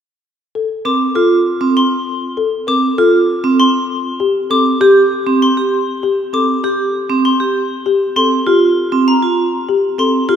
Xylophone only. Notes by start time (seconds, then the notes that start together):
0.85 D6
1.77 C6
2.68 D6
3.60 C6
4.51 D6
5.42 C6
6.34 D6
7.25 C6
8.16 C6
9.08 A#5
9.99 C6